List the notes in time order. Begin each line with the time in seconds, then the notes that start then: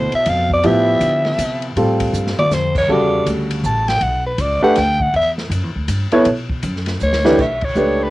Already playing: D2 B2 E4 A4 C5
0.12 E5, muted upright bass stroke, ride
0.25 F2 F5, ride
0.50 D5, kick
0.63 A2 F3 B3 E4 G4 E5, ride
1.00 D3, hi-hat pedal, ride
1.25 snare, ride
1.38 C3, hi-hat pedal, ride
1.62 ride
1.76 A2 G3 C4 F4 A4, ride
2.00 kick, ride
2.13 G2, hi-hat pedal
2.27 snare
2.37 D5, muted upright bass stroke, mid tom
2.51 F2 C5, snare, hi-hat pedal
2.75 C#5, kick, crash
2.88 E2 C#3 G3 F#4 A4
2.92 D5
3.26 D2, hi-hat pedal, ride
3.51 ride
3.64 A1 A5, hi-hat pedal
3.88 G5, snare, ride
4.01 B1 F#5, ride
4.26 B4
4.38 C#2 D5, hi-hat pedal, ride
4.62 A3 D4 G4 B4 F#5, muted upright bass stroke
4.76 D2 G5, snare, ride
5.00 F#5, kick
5.14 E2 E5, ride
5.38 snare
5.50 F#2, hi-hat pedal, ride
5.63 E2
5.76 D2
5.88 G2, hi-hat pedal, ride
6.12 B3 E4 A4 C#5, muted upright bass stroke, ride
6.25 B2, ride
6.50 kick
6.63 F#2, hi-hat pedal, ride
6.76 snare
6.86 snare, ride
7.00 D2 C#5, hi-hat pedal
7.13 snare
7.24 E3 A3 D4 G4 B4, snare
7.38 B1 E5, kick, crash
7.61 C#5, kick, ride
7.75 C#2 A3 D4 G4 B4, hi-hat pedal
8.03 B4